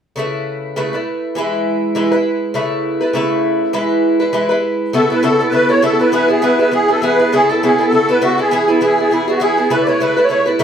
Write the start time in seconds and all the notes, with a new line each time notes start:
0.16 C#3 A3 E4 B4
0.76 C#3 A3 E4 B4
0.93 A3 E4 B4
1.35 E3 G#3 E4 B4
1.95 E3 G#3 E4 B4
2.12 G#3 E4 B4
2.54 C#3 A3 E4 B4
3.01 A3 E4 B4
3.13 C#3 A3 E4 B4
3.73 E3 G#3 E4 B4
4.20 G#3 E4 B4
4.33 E3 G#3 E4 B4
4.49 G#3 E4 B4
4.93 C#3 B3 E4 A4
5.10 B3 E4 A4 B4
5.23 C#3 B3 E4 A4
5.39 B3 E4 A4
5.48 B4
5.52 C#3 B3 E4 A4 B4
5.69 B3 E4 A4 C#5
5.82 C#3 B3 E4 A4
6.00 B3 E4 A4 B4
6.12 E3 B3 E4 G#4 B4
6.28 B3 E4 G#4
6.42 E3 B3 E4 G#4 B4
6.59 B3 E4 G#4 B4
6.71 E3 B3 E4 G#4
6.88 B3 E4 G#4 A4
7.02 E3 B3 E4 G#4 B4
7.19 B3 E4 G#4
7.33 C#3 B3 E4 G#4 A4
7.49 B3 E4 A4
7.63 C#3 B3 E4 G#4 A4
7.79 B3 E4 A4
7.87 A4
7.92 C#3 B3 E4 A4
8.09 B3 E4 A4 B4
8.22 C#3 B3 E4 F#4 A4
8.38 B3 E4 G#4 A4
8.51 E3 B3 E4 G#4
8.68 B3 E4 G#4
8.81 E3 B3 E4 G#4
8.98 B3 E4 G#4
9.11 E3 B3 E4 G#4
9.28 B3 E4 F#4 G#4
9.40 E3 B3 E4 G#4
9.57 B3 E4 G#4
9.70 C#3 A3 E4 B4
9.83 D5
9.87 A3 E4 B4 C#5
10.00 C#3 A3 E4 B4
10.17 A3 E4 B4
10.24 C#5
10.29 C#3 A3 E4 B4 C#5
10.46 A3 E4 B4
10.59 C#3 A3 E4